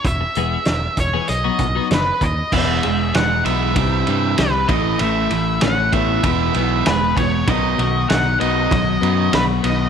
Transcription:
<<
  \new Staff \with { instrumentName = "Lead electric guitar" } { \time 4/4 \key e \major \tempo 4 = 97 e''4. cis''8 dis''4 b'8 dis''8 | e''4 fis''8 e''4. b'8 dis''8 | e''4 fis''8 e''4. b'8 cis''8 | dis''4 fis''8 dis''4. b'8 dis''8 | }
  \new Staff \with { instrumentName = "Clean electric guitar" } { \time 4/4 \key e \major r8 <e gis b gis'>16 r4 <e gis b gis'>16 r16 <fis b dis' fis'>16 r16 <fis b dis' fis'>16 r4 | e,8 gis'8 dis'8 b8 c8 g8 g'8 a,8 | a,8 e'8 cis'8 b8 e,8 b8 gis'8 b8 | b,8 fis'8 dis'8 b8 fis8 b8 fis'8 b8 | }
  \new Staff \with { instrumentName = "Overdriven electric guitar" } { \clef bass \time 4/4 \key e \major r1 | <e gis b>8 <e gis>8 <e gis>8 <e gis b>8 <c e g>8 <c e g>8 <c e>8 <a, e a>8 | <a, e a>8 <a, e>8 <a, e>8 <a, e a>8 <e gis b>8 <e gis b>8 <e gis>8 <e gis>8 | <b, dis fis>8 <b, dis>8 <b, dis>8 <b, dis fis>8 <b, dis>8 <b, dis fis>8 <b, dis>8 <b, dis>8 | }
  \new Staff \with { instrumentName = "Picked electric bass" } { \clef bass \time 4/4 \key e \major e,,8 e,,8 e,,8 e,,8 b,,8 b,,8 fis,,8 dis,8 | e,,8 e,,8 e,,8 b,,8 c,8 g,8 c,8 a,,8 | a,,8 a,,8 a,,8 a,,8 e,,8 b,,8 e,,8 e,,8 | b,,8 b,,8 b,,8 b,,8 b,,8 fis,8 b,,8 b,,8 | }
  \new DrumStaff \with { instrumentName = "Drums" } \drummode { \time 4/4 <hh bd>8 hh8 <hh sn>8 <hh bd>8 hh8 <hh bd>8 <hh sn>8 <hh bd>8 | <cymc bd>8 cymr8 <cymr sn>8 cymr8 <bd cymr>8 cymr8 <cymr sn>8 <bd cymr>8 | cymr8 cymr8 <cymr sn>8 <bd cymr>8 <bd cymr>8 cymr8 <cymr sn>8 <bd cymr>8 | <bd cymr>8 cymr8 <cymr sn>8 cymr8 <bd cymr>8 cymr8 <cymr sn>8 cymr8 | }
>>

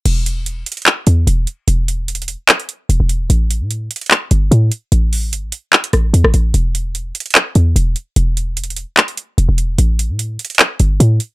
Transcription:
<<
  \new Staff \with { instrumentName = "808-style bass" } { \clef bass \time 4/4 \key a \dorian \tempo 4 = 148 e,,4. r4 e,8 e,,8 r8 | e,,4.~ e,,16 r4 r16 e,,16 e,,8. | a,,8. a,8. r4 g,,8 a,8 r8 | a,,4 g,,16 a,,16 r4 a,,8 e,16 a,,16 a,,8 |
e,,4. r4 e,8 e,,8 r8 | e,,4.~ e,,16 r4 r16 e,,16 e,,8. | a,,8. a,8. r4 g,,8 a,8 r8 | }
  \new DrumStaff \with { instrumentName = "Drums" } \drummode { \time 4/4 <cymc hh>8 hh8 hh8 hh32 hh32 hh32 hh32 <hc hh>8 hh8 hh8 hh8 | hh8 hh8 \tuplet 3/2 { hh16 hh16 hh16 hh16 r16 r16 } <hc hh>16 hh16 hh8 hh8 hh8 | hh8 hh8 hh8 hh32 hh32 hh32 hh32 <hc hh>8 hh8 hh8 hh8 | hh8 hho8 hh8 hh8 <hc hh>16 hh16 <hh ss>8 hh16 ss16 hh8 |
hh8 hh8 hh8 hh32 hh32 hh32 hh32 <hc hh>8 hh8 hh8 hh8 | hh8 hh8 \tuplet 3/2 { hh16 hh16 hh16 hh16 r16 r16 } <hc hh>16 hh16 hh8 hh8 hh8 | hh8 hh8 hh8 hh32 hh32 hh32 hh32 <hc hh>8 hh8 hh8 hh8 | }
>>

